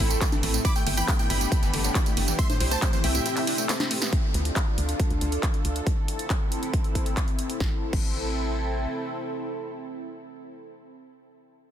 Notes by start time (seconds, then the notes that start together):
Already playing: C4 E4 A4 G5 B5
0.00 A1
0.10 A3, closed hi-hat, tambourine
0.21 A3, kick, clap, closed hi-hat, ride, tambourine
0.32 E3, closed hi-hat, tambourine, high conga
0.43 A1 A3, open hi-hat, ride
0.54 A2, closed hi-hat, tambourine
0.65 B3 D4 E4 G4 B5 D6, kick, closed hi-hat, ride, tambourine
0.76 A3 G5, closed hi-hat, tambourine
0.87 G1 A3 G5, open hi-hat, ride
0.97 E3 G5 B5, closed hi-hat, tambourine
1.08 A3 G5, kick, clap, closed hi-hat, ride, tambourine
1.19 A2 G5, closed hi-hat, tambourine
1.30 G1 E4 G5 B5, open hi-hat, ride
1.41 A3, closed hi-hat, tambourine
1.52 A3, kick, closed hi-hat, ride, tambourine
1.63 G1 E3, closed hi-hat, tambourine
1.73 G1 A3, open hi-hat, ride
1.84 A2, closed hi-hat, tambourine
1.95 E4, kick, clap, closed hi-hat, ride, tambourine
2.06 A3, closed hi-hat, tambourine
2.17 G1 A3, open hi-hat, ride
2.28 E3, closed hi-hat, tambourine
2.39 C4 E4 E5 C6, kick, closed hi-hat, ride, tambourine
2.50 A2 C5, closed hi-hat, tambourine, high conga
2.60 C2 E4 C5, open hi-hat, ride
2.71 A3 C5 A5, closed hi-hat, tambourine
2.82 A3 C5, kick, clap, closed hi-hat, ride, tambourine
2.93 E3 C5, closed hi-hat, tambourine
3.04 C2 A3 E5 G5, open hi-hat, ride
3.15 A2, closed hi-hat, tambourine
3.26 E4, closed hi-hat, ride, tambourine
3.37 A3, clap, open hi-hat, tambourine
3.47 D4, open hi-hat, ride
3.58 A3, closed hi-hat, tambourine
3.69 A4, snare, clap, closed hi-hat, ride, tambourine
3.80 C4, snare, closed hi-hat, tambourine, high conga
3.91 A3, open hi-hat, ride
4.02 B3, snare, tambourine
4.13 D4 F4 A4, kick, closed hi-hat
4.34 D2, closed hi-hat
4.45 closed hi-hat
4.56 kick, clap, closed hi-hat
4.78 D2, closed hi-hat
4.89 closed hi-hat
5.00 kick, closed hi-hat
5.10 D2, closed hi-hat
5.21 D2, closed hi-hat
5.32 closed hi-hat
5.43 kick, clap, closed hi-hat
5.54 closed hi-hat
5.65 D2, closed hi-hat
5.76 closed hi-hat
5.87 C4 E4, kick, closed hi-hat
6.08 closed hi-hat
6.19 closed hi-hat
6.30 kick, clap, closed hi-hat
6.52 closed hi-hat
6.63 closed hi-hat
6.74 kick, closed hi-hat
6.84 closed hi-hat
6.95 kick, closed hi-hat
7.06 closed hi-hat
7.17 kick, clap, closed hi-hat
7.28 closed hi-hat
7.39 closed hi-hat
7.50 closed hi-hat
7.60 A1 C4 E4 A4, kick, snare
7.93 A1, kick, crash